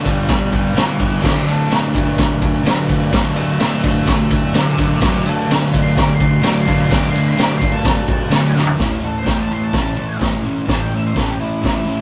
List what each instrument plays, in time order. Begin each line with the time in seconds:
Already playing: overdriven electric guitar D3
0.03 overdriven electric guitar B3 D4, kick, ride
0.07 overdriven electric guitar G3, lead electric guitar D5 G5
0.28 lead electric guitar D5, kick, snare, ride
0.33 lead electric guitar G5
0.52 lead electric guitar D5 G5, kick, ride
0.74 overdriven electric guitar G2 D3 G3 B3, snare, ride
0.78 overdriven electric guitar D4, lead electric guitar B4 E5
0.98 overdriven electric guitar G3 B3 D4, lead electric guitar B4, kick, ride
1.02 lead electric guitar E5
1.20 overdriven electric guitar D3 F#3 A3, kick, crash
1.25 overdriven electric guitar D4, lead electric guitar C5 E5, snare
1.45 overdriven electric guitar F#3 A3 D4, ride
1.49 lead electric guitar A4
1.68 overdriven electric guitar D3 F#3 A3, ride
1.72 overdriven electric guitar D4, snare
1.93 overdriven electric guitar A3 D4, kick, ride
1.97 overdriven electric guitar F#3
2.18 kick, snare, ride
2.41 kick, ride
2.63 overdriven electric guitar D3 F#3 A3, snare, ride
2.67 overdriven electric guitar D4
2.88 overdriven electric guitar F#3 A3 D4, kick, ride
3.11 overdriven electric guitar D3 F#3 A3, lead electric guitar E5 A5, kick, snare, ride
3.15 overdriven electric guitar D4
3.35 overdriven electric guitar A3 D4, lead electric guitar E5 A5, ride
3.40 overdriven electric guitar F#3
3.60 overdriven electric guitar D3 F#3 A3, lead electric guitar E5 A5, snare, ride
3.64 overdriven electric guitar D4
3.83 overdriven electric guitar A3 D4, lead electric guitar E5 A5, kick, ride
3.88 overdriven electric guitar F#3
4.07 lead electric guitar E5 A5, kick, snare, ride
4.30 lead electric guitar E5 A5, kick, ride
4.53 overdriven electric guitar D3 F#3 A3 D4, snare, ride
4.58 lead electric guitar C5 E5
4.77 overdriven electric guitar A3 D4, lead electric guitar C5 E5, kick, ride
4.82 overdriven electric guitar F#3
5.01 overdriven electric guitar D3 F#3 A3, lead electric guitar C5 E5, kick, snare, ride
5.05 overdriven electric guitar D4
5.24 overdriven electric guitar A3 D4, ride
5.28 overdriven electric guitar F#3, lead electric guitar A4
5.47 overdriven electric guitar D3 F#3 A3, ride
5.51 overdriven electric guitar D4, snare
5.71 overdriven electric guitar A3 D4, kick, ride
5.75 overdriven electric guitar F#3
5.82 lead electric guitar C6
5.97 lead electric guitar D6, kick, snare, ride
6.15 lead electric guitar C6
6.20 kick, ride
6.31 lead electric guitar C6
6.42 overdriven electric guitar D3 F#3 A3 D4, snare, ride
6.46 lead electric guitar D6
6.61 overdriven electric guitar D4, lead electric guitar C6
6.67 overdriven electric guitar F#3 A3, kick, ride
6.78 lead electric guitar C6
6.89 overdriven electric guitar D3 F#3 A3, kick, snare, ride
6.93 overdriven electric guitar D4, lead electric guitar D6
7.10 overdriven electric guitar D4, lead electric guitar C6
7.15 overdriven electric guitar F#3 A3, ride
7.27 lead electric guitar C6
7.35 overdriven electric guitar D3 F#3 A3, snare, ride
7.40 overdriven electric guitar D4, lead electric guitar D6
7.58 overdriven electric guitar D4, lead electric guitar C6, kick, ride
7.62 overdriven electric guitar F#3 A3
7.73 lead electric guitar A5
7.85 kick, snare, ride
8.08 kick, ride
8.30 overdriven electric guitar D3 F#3 A3 D4, snare, ride
8.53 overdriven electric guitar A3 D4, snare
8.57 overdriven electric guitar F#3
8.66 floor tom
8.77 overdriven electric guitar A2 E3 A3 C#4, kick, snare, open hi-hat
8.81 overdriven electric guitar E4
9.00 overdriven electric guitar C#4 E4
9.04 overdriven electric guitar A3, lead electric guitar A4
9.18 lead electric guitar C5
9.23 overdriven electric guitar A2 E3 A3 C#4, kick, snare, open hi-hat
9.28 overdriven electric guitar E4, lead electric guitar G5
9.41 lead electric guitar A5
9.48 overdriven electric guitar C#4 E4, lead electric guitar C6
9.52 overdriven electric guitar A3
9.64 lead electric guitar A5
9.72 overdriven electric guitar E3 A3 C#4, kick, snare, open hi-hat
9.76 overdriven electric guitar E4, lead electric guitar A5
9.95 overdriven electric guitar E3 A3 C#4 E4
9.99 overdriven electric guitar A2
10.18 overdriven electric guitar E3 A3 C#4, kick, open hi-hat
10.22 overdriven electric guitar E4, snare
10.42 overdriven electric guitar C#4 E4
10.47 overdriven electric guitar A3
10.66 overdriven electric guitar A2 E3 A3 C#4, kick, snare, open hi-hat
10.70 overdriven electric guitar E4, lead electric guitar A5
10.82 lead electric guitar G5
10.89 overdriven electric guitar C#4 E4
10.94 overdriven electric guitar A3, lead electric guitar E5
11.07 lead electric guitar C5
11.13 overdriven electric guitar A2 E3 A3 C#4, lead electric guitar A4, kick, open hi-hat
11.18 overdriven electric guitar E4, snare
11.29 lead electric guitar G4
11.38 overdriven electric guitar C#4 E4, lead electric guitar E4
11.43 overdriven electric guitar A3
11.61 overdriven electric guitar E3 A3 C#4 E4, lead electric guitar E4, kick, open hi-hat
11.65 snare
11.85 overdriven electric guitar E3 A3 C#4 E4
11.90 overdriven electric guitar A2